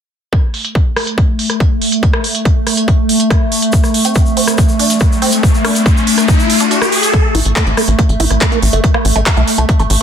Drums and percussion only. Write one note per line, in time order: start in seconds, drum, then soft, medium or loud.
0.33 kick loud
0.33 cross-stick soft
0.33 closed hi-hat medium
0.54 open hi-hat loud
0.65 closed hi-hat medium
0.75 kick loud
0.75 closed hi-hat medium
0.96 cross-stick medium
0.96 open hi-hat loud
1.07 closed hi-hat medium
1.18 kick loud
1.18 closed hi-hat medium
1.39 open hi-hat loud
1.50 cross-stick soft
1.50 closed hi-hat medium
1.60 kick loud
1.60 closed hi-hat medium
1.82 open hi-hat loud
1.92 closed hi-hat medium
2.03 kick loud
2.03 closed hi-hat medium
2.13 cross-stick medium
2.24 open hi-hat loud
2.35 closed hi-hat medium
2.45 kick loud
2.45 closed hi-hat medium
2.67 cross-stick soft
2.67 open hi-hat loud
2.77 closed hi-hat medium
2.88 kick loud
2.88 closed hi-hat medium
3.09 open hi-hat loud
3.20 closed hi-hat medium
3.30 kick loud
3.30 cross-stick medium
3.30 closed hi-hat medium
3.52 open hi-hat loud
3.62 closed hi-hat medium
3.72 kick loud
3.72 closed hi-hat medium
3.72 shaker medium
3.84 cross-stick soft
3.84 shaker soft
3.94 open hi-hat loud
4.04 closed hi-hat medium
4.04 shaker medium
4.15 kick loud
4.15 closed hi-hat medium
4.15 shaker medium
4.26 shaker soft
4.37 open hi-hat loud
4.47 cross-stick medium
4.47 closed hi-hat medium
4.47 shaker medium
4.58 kick loud
4.58 closed hi-hat medium
4.58 shaker medium
4.68 shaker soft
4.79 open hi-hat loud
4.90 closed hi-hat medium
4.90 shaker medium
5.00 kick loud
5.00 cross-stick soft
5.00 closed hi-hat medium
5.00 shaker medium
5.12 shaker soft
5.22 open hi-hat loud
5.32 closed hi-hat medium
5.32 shaker medium
5.43 kick loud
5.43 closed hi-hat medium
5.43 shaker medium
5.54 shaker soft
5.65 cross-stick medium
5.65 open hi-hat loud
5.75 closed hi-hat medium
5.75 shaker medium
5.86 kick loud
5.86 closed hi-hat medium
5.86 shaker medium
5.97 shaker soft
6.07 open hi-hat loud
6.18 cross-stick soft
6.18 closed hi-hat medium
6.18 shaker medium
6.28 kick loud
6.28 closed hi-hat medium
6.28 shaker medium
6.39 shaker soft
6.50 open hi-hat loud
6.60 closed hi-hat medium
6.60 shaker medium
6.71 closed hi-hat medium
6.71 shaker medium
6.82 cross-stick medium
6.82 shaker soft
6.92 open hi-hat loud
7.03 closed hi-hat medium
7.03 shaker medium
7.13 kick loud
7.13 cross-stick soft
7.13 closed hi-hat medium
7.35 open hi-hat loud
7.45 closed hi-hat medium
7.56 kick loud
7.56 clap loud
7.56 closed hi-hat medium
7.67 closed hi-hat soft
7.77 cross-stick medium
7.77 open hi-hat loud
7.88 closed hi-hat medium
7.99 kick loud
7.99 closed hi-hat medium
8.09 closed hi-hat soft
8.20 open hi-hat loud
8.31 cross-stick soft
8.31 closed hi-hat medium
8.41 kick loud
8.41 clap loud
8.41 closed hi-hat medium
8.52 closed hi-hat soft
8.62 open hi-hat loud
8.73 closed hi-hat medium
8.84 kick loud
8.84 closed hi-hat medium
8.94 cross-stick medium
9.05 open hi-hat loud
9.16 closed hi-hat medium
9.26 kick loud
9.26 clap loud
9.26 closed hi-hat medium
9.37 closed hi-hat soft
9.48 open hi-hat loud
9.58 closed hi-hat medium
9.69 kick loud
9.69 closed hi-hat medium
9.79 closed hi-hat soft
9.90 open hi-hat loud